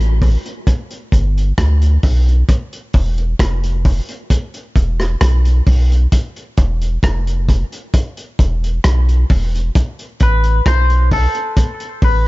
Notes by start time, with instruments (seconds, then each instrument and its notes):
Already playing: sub bass A1
0.00 closed hi-hat
0.22 kick, open hi-hat
0.46 closed hi-hat
0.67 kick, closed hi-hat
0.91 closed hi-hat
1.12 sub bass G1, kick, closed hi-hat
1.38 closed hi-hat
1.58 sub bass D2, kick, cross-stick, closed hi-hat
1.82 closed hi-hat
2.03 sub bass B1, kick, open hi-hat
2.29 closed hi-hat
2.49 kick, closed hi-hat
2.73 closed hi-hat
2.93 sub bass E1, kick, open hi-hat
3.18 closed hi-hat
3.39 sub bass F1, kick, cross-stick, closed hi-hat
3.64 closed hi-hat
3.85 kick, open hi-hat
4.09 closed hi-hat
4.30 kick, closed hi-hat
4.54 closed hi-hat
4.76 sub bass E1, kick, closed hi-hat
5.00 cross-stick, closed hi-hat
5.21 sub bass B1, kick, cross-stick, closed hi-hat
5.45 closed hi-hat
5.66 sub bass B1, kick, open hi-hat
5.92 closed hi-hat
6.12 kick, closed hi-hat
6.36 closed hi-hat
6.57 sub bass E1, kick, closed hi-hat
6.81 closed hi-hat
7.03 sub bass F1, kick, cross-stick, closed hi-hat
7.27 closed hi-hat
7.49 kick, closed hi-hat
7.72 closed hi-hat
7.94 kick, closed hi-hat
8.17 closed hi-hat
8.39 sub bass E1, kick, closed hi-hat
8.64 closed hi-hat
8.84 sub bass B1, kick, cross-stick, closed hi-hat
9.09 closed hi-hat
9.30 sub bass E1, kick, open hi-hat
9.55 closed hi-hat
9.75 kick, closed hi-hat
9.99 closed hi-hat
10.20 sub bass A1, clean electric guitar B4, kick, closed hi-hat
10.44 closed hi-hat
10.66 sub bass B1, clean electric guitar C5, kick, cross-stick, closed hi-hat
10.90 closed hi-hat
11.11 clean electric guitar A4, kick, open hi-hat
11.35 closed hi-hat
11.57 kick, closed hi-hat
11.80 closed hi-hat
12.02 sub bass A1, clean electric guitar B4, kick, open hi-hat